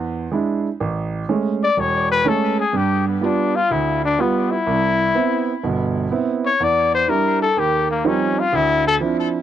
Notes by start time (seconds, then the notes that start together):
Already playing: E2
0.32 G#3 D4 E4
0.80 A1
1.29 G#3 A3 C#4
1.63 D5
1.77 E1 C#5
2.12 B4
2.25 G#3 A3 C#4 A4
2.60 G#4
2.73 G2
2.77 G4
3.08 B3
3.21 G3 B3 D4 F4
3.56 F4
3.71 D2 E4
4.05 D4
4.19 G3 B3 F4
4.51 E4
4.67 C2
5.15 B3 C4 E4
5.63 G1 B2
6.11 B3 C4 E4
6.46 C#5
6.60 E2 D5
6.95 C5
7.08 G3 D4 E4 A#4
7.42 A4
7.57 D#2 G4
7.91 A#3
8.04 F3 G3 C4 C#4 D#4
8.40 F4
8.53 D2 E4
8.87 A4
9.00 F3 C4 D4 E4